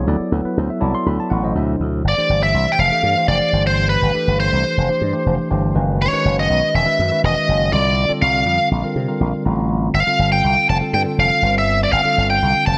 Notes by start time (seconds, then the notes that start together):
0.07 D2 F#3 B3 E4 A4 D5
0.32 D2 F#3 B3 E4 A4 B4
0.45 B4, muted slap bass stroke
0.57 D2 C5
0.70 E5
0.81 C2 F#3 B3 E4 A4 D5 A5
0.95 C6
1.06 D2 B5
1.20 A5
1.30 A1 F#5
1.43 B2 F#3 E4 A4 C5 D#5
1.55 D2 E5
1.80 D2
2.04 G1 D5
2.17 E3 A3 D4 G4 C5
2.29 G1
2.43 E5
2.54 C2
2.72 G5
2.79 F1 F5
2.92 E3 A3 D4 G4 A4
3.03 G2
3.17 E3 A3 D4 G4 C5
3.28 F1 D5
3.53 G1 E3 A3 D4 G4 C5
3.67 C5
3.89 B4
4.02 G1
4.14 E3 A3 D4 G4 A4
4.27 G1
4.40 C5
4.53 C2
4.77 F1
4.89 E3 A3 D4 G4 C5
5.01 G2
5.13 E3 A3 D4 G4 C5
5.26 F1
5.50 G1 E3 A3 D4 G4 C5 G5
5.74 F#1 D#3 G#3 C#4 F#4 B4 D#5
6.02 C#5
6.12 D#3 G#3 C#4 F#4 B4
6.25 F#1
6.39 D#5
6.50 B1
6.74 E1 E5
6.85 D#3 G#3 C#4 F#4 B4
6.99 F#2
7.11 D#3 G#3 C#4 F#4 B4
7.24 E1 D#5
7.47 F#1 D#3 G#3 C#4 F#4 C#5
7.72 C2 D3 G3 C4 F4 A4 D5
8.08 D3 G3 C4 F4 A4, muted slap bass stroke
8.22 C2 F5
8.46 F2
8.71 A#1
8.83 D3 G3 C4 F4 A#4
8.96 C3
9.08 D3 G3 C4 F4 A#4
9.20 A#1 D5
9.45 A1 D3 G3 A3 C4 F4 A#5
9.94 G1 F5
10.07 D3 G3 C4 F4 A4
10.19 G1
10.32 G5
10.44 C2
10.69 F1 A5
10.81 D3 G3 C4 F4 A4
10.93 G2 G5
11.05 D3 G3 C4 F4 A4
11.18 F1 F5
11.42 G1 D3 G3 C4 F4 B4
11.58 E5
11.83 D5
11.92 G1 F5
12.04 D3 G3 C4 F4 A4
12.18 G1
12.30 G5
12.42 C2
12.66 F1 A5